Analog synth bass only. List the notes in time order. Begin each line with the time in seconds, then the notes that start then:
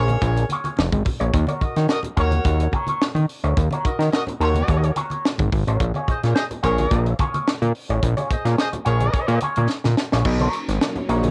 Already playing: A#1
0.22 A#1
0.79 F1
0.92 G#1
1.21 A#1
1.34 D#2
1.61 D#3
1.77 D#3
2.17 D#2
2.45 D#2
3.15 D#3
3.44 D2
3.57 D#2
3.85 D#3
3.99 D#3
4.40 D#2
4.69 D#2
5.39 G#1
5.53 G#1
5.67 A1
5.80 A#1
6.08 A#2
6.24 A#2
6.64 A#1
6.91 A#1
7.62 A#2
7.89 A1
8.03 A#1
8.30 A#2
8.45 A#2
8.86 A#1
9.28 A#2
9.57 A#2
9.85 A#2
10.13 A#1
10.26 B1
10.68 G#1
11.09 A#1